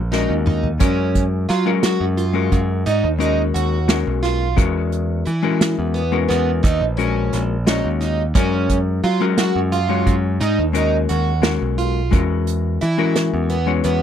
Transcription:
Already playing: A#1
0.12 G#3 C#4 D#4 F#4 A#4, snare
0.30 D#2
0.46 D#4, mid tom
0.63 floor tom
0.80 F#2 G#3 C#4 F#4 A#4, kick, closed hi-hat
1.15 kick, closed hi-hat
1.49 F#3 F4, snare, closed hi-hat
1.66 G#3 C#4 F#4 A#4
1.83 F#4, snare, closed hi-hat
2.01 F#2
2.18 F4, closed hi-hat
2.33 G#3 C#4 F#4 A#4
2.52 F#2, kick, closed hi-hat
2.86 G#2 D#4, closed hi-hat
3.04 D#2
3.19 G#3 C#4 D#4 F#4 A#4, closed hi-hat
3.54 D#2 F#4, closed hi-hat
3.88 G#3 C#4 F#4 A#4, snare, closed hi-hat
4.07 B1
4.23 F4, snare, closed hi-hat
4.56 E2 G#3 C#4 F#4 A#4, kick, closed hi-hat
4.92 closed hi-hat
5.26 E3 E4, closed hi-hat
5.43 G#3 C#4 F#4 A#4
5.61 snare, closed hi-hat
5.79 E2
5.94 B3, closed hi-hat
6.12 G#3 C#4 F#4 A#4
6.29 E2 B3, snare, closed hi-hat
6.63 D#2 D#4, kick, closed hi-hat
6.81 A#1
6.97 G#3 C#4 F#4 A#4, closed hi-hat
7.33 A#1, snare, closed hi-hat
7.66 G#3 C#4 D#4 F#4 C#5, snare, closed hi-hat
7.85 D#2
8.01 D#4, snare, closed hi-hat
8.35 F#2 G#3 C#4 F#4 A#4, kick, closed hi-hat
8.69 kick, closed hi-hat
9.04 F#3 F4, closed hi-hat
9.20 G#3 C#4 F#4 A#4
9.38 F#4, snare, closed hi-hat
9.56 F#2
9.72 F4, closed hi-hat
9.89 G#3 C#4 F#4 C#5
10.06 F#2, kick, closed hi-hat
10.41 G#2 D#4, closed hi-hat
10.59 D#2
10.73 G#3 C#4 D#4 F#4 A#4, closed hi-hat
11.09 D#2 F#4, closed hi-hat
11.42 G#3 C#4 F#4 A#4, snare, closed hi-hat
11.62 B1
11.78 F4, closed hi-hat
12.11 E2 G#3 C#4 F#4 A#4, kick, closed hi-hat
12.47 closed hi-hat
12.81 E3 E4, closed hi-hat
12.98 G#3 C#4 F#4 A#4
13.16 snare, closed hi-hat
13.34 E2
13.50 B3, closed hi-hat
13.66 G#3 C#4 F#4 C#5
13.84 E2 B3, closed hi-hat

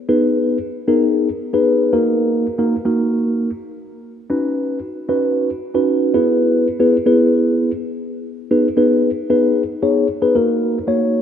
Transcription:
0.08 B3 D#4 G#4 B4
0.88 B3 D#4 G#4 A#4
1.53 B3 D#4 G#4 B4
1.93 A#3 D#4 F#4 A#4
2.59 A#3 D#4 F#4 A#4
2.85 A#3 D#4 F#4 A#4
4.30 C#4 D#4 F#4 B4
5.09 C#4 D#4 F#4 B4
5.74 C#4 D#4 F#4 B4
6.14 B3 E4 G#4 B4
6.80 B3 E4 G#4 B4
7.06 B3 E4 G#4 B4
8.51 B3 D#4 G#4 B4
8.77 B3 D#4 G#4 B4
9.30 B3 D#4 G#4 B4
9.82 B3 D#4 G#4 C#5
10.22 B3 D#4 G#4 B4
10.35 A#3 D#4 F#4 A#4
10.88 A#3 D#4 F#4 C#5

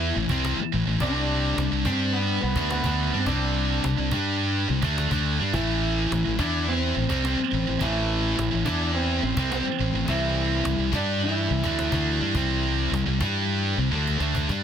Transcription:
Already playing: E2 E3 B3 E4
0.16 A1 A2 E3
0.29 C2 C3 G3 C4, cajon bass
0.45 cajon slap
0.58 muted fingered electric bass stroke, muted distorted electric guitar stroke
0.73 A1 A2 E3
0.87 A1 A2 E3
1.00 C2 C3 G3 C4 D4 D5, cajon bass
1.57 C2 C3 G3, cajon slap
1.72 C2 C3 G3
1.85 G2 G3 C4 D4 G4 C5, cajon bass
2.12 B3 B4
2.42 C2 C3 G3 B3 B4
2.56 D2 D3 A3 D4, cajon bass
2.70 B3 B4, cajon slap
2.84 D2 D3 A3 D4, cajon bass
3.13 G2 G3 D4
3.19 C4
3.26 C2 C3 G3 C4 D4 D5, cajon bass
3.84 C2 C3 G3, cajon slap
3.98 C2 C3 G3
4.12 G2 G3 D4 G4, cajon bass
4.69 C2 C3 G3
4.83 D2 D3 A3 D4, cajon bass
4.98 cajon slap
5.11 D2 D3 A3 D4, cajon bass
5.40 G2 G3 D4
5.53 A1 A2 E3 A3 E4, cajon bass
6.11 A1 A2 E3, cajon slap
6.25 A1 A2 E3
6.39 E2 E3 B3 D4 E4 D5, cajon bass
6.68 C4 C5
6.96 A1 A2 E3
7.10 C2 C3 G3 C4, cajon bass
7.24 C4 C5, cajon slap
7.38 muted distorted electric guitar stroke, muted fingered electric bass stroke
7.51 A1 A2 E3
7.67 A1 A2 E3
7.81 A1 A2 E3 A3 E4, cajon bass
8.37 A1 A2 E3, cajon slap
8.51 A1 A2 E3
8.65 E2 E3 B3 D4 E4 D5, cajon bass
8.94 C4 C5
9.23 A1 A2 E3 C4 C5
9.36 C2 C3 G3 C4, cajon bass
9.51 C4 C5, cajon slap
9.65 muted distorted electric guitar stroke, muted fingered electric bass stroke
9.79 A1 A2 E3
9.93 A1 A2 E3
10.08 C2 C3 E3 G3 C4 E4, cajon bass
10.64 C2 C3 G3, cajon slap
10.78 C2 C3 G3
10.92 G2 G3 D4 G4 D5, cajon bass
10.96 G4
11.24 E3 E4
11.49 C2 C3 G3
11.63 D2 D3 A3 D4, cajon bass
11.79 cajon slap
11.92 D2 D3 A3 D4, cajon bass
12.20 G2 G3 D4
12.34 C2 C3 G3 C4, cajon bass
12.91 C2 C3 G3, cajon slap
13.06 C2 C3 G3, cajon slap
13.20 G2 G3 D4 G4, cajon bass
13.78 C2 C3 G3
13.91 D2 D3 A3 D4
14.07 cajon slap
14.20 D2 D3 A3 D4, cajon slap
14.35 cajon bass
14.49 G2 G3 D4, cajon bass

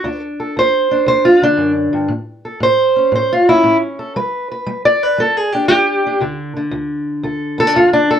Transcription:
Already playing: D5
0.04 D2 D4
0.40 A4
0.57 D2 C5
0.91 D4
1.06 D2 C5
1.25 F4
1.42 D3 D4
1.57 F#2
1.93 G2
2.08 A2
2.45 A4
2.60 A2 C5
2.96 C#4
3.12 A2 C5
3.33 F4
3.49 C#4 E4
3.63 A2 C#4
3.99 A4
4.16 G3 B4
4.52 B4
4.66 G3
4.85 D5
5.03 B4
5.18 G3 A4
5.37 G#4
5.52 D4 G4
5.68 G3 G4
6.06 D4
6.20 D2 D3
6.56 D3
6.71 D2
7.23 D2 A4
7.58 B3 A4
7.67 D4
7.75 D2 F4
7.93 D4
8.11 A4

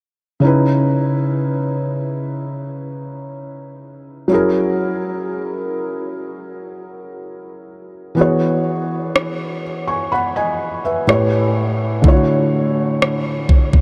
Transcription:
0.40 C#3 C#4 D#4
0.45 E4 B4
4.28 F#3 C#4 E4
4.32 G#4 A#4
8.15 E3 B3 F#4
8.19 G#4 C#5
9.16 cross-stick
9.87 G#5 C#6
10.12 F#5 B5
10.36 D#5 G#5
10.85 B4 E5
11.07 A2 A3 G4 B4 C#5, cross-stick
12.02 D3 A3 E4, kick
12.07 F4 C#5
12.13 F#4
13.02 cross-stick
13.49 kick
13.73 kick

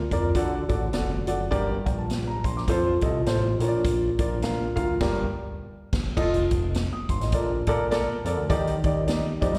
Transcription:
0.11 F2 F4 A#4 D5, kick, closed hi-hat
0.35 D3 F#4 A4 D5, kick, closed hi-hat
0.69 A1 F#4 A4 D5, kick, closed hi-hat
0.93 F1 F#4 A4 D5, snare, closed hi-hat
1.27 F#1 F#4 A4 D5, closed hi-hat
1.51 G1 G2 G4 A#4 D5, kick, closed hi-hat
1.86 A#1 G5, kick, closed hi-hat
1.98 A5
2.10 snare, closed hi-hat
2.27 A#5
2.44 A#1 C6, kick, closed hi-hat
2.57 D6, snare
2.68 F2 F4 A4 C5, kick, closed hi-hat
3.01 C2 F4 A4 D#5, kick, closed hi-hat
3.26 A1 F4 A4 C5, snare, closed hi-hat
3.59 A#1 A#2 F4 A#4 C#5, closed hi-hat
3.68 D5
3.84 kick, closed hi-hat
4.19 A#1 F4 A#4 D5, kick, closed hi-hat
4.42 F4 A#4 F5, snare, closed hi-hat
4.76 D2 F4 A#4 F5, kick, closed hi-hat
5.01 G1 G2 G4 A#4 D5, kick, snare, crash
5.93 G1, kick, snare, crash
6.17 F1 F4 A4 D#5, kick, crash
6.34 closed hi-hat
6.51 F1, kick, closed hi-hat
6.74 snare, closed hi-hat
6.93 D#6
7.09 G1 C6, kick, closed hi-hat
7.21 A1 D#5, snare, closed hi-hat
7.32 A#1 A#2 A4 A#4 D5, kick, closed hi-hat
7.67 A#2 A4 A#4 D5, kick, closed hi-hat
7.91 A4 A#4 D5, snare, closed hi-hat
8.25 F2 A4 A#4 D5, closed hi-hat
8.37 D2
8.50 D#2 D#3 D#4 G4 D5, kick, closed hi-hat
8.67 closed hi-hat
8.84 D#2 D#4 G4 D5, kick, closed hi-hat
9.07 D#4 G4 D5, snare, closed hi-hat
9.41 F2 D#4 G4 D5, kick, closed hi-hat
9.54 G2, snare, closed hi-hat

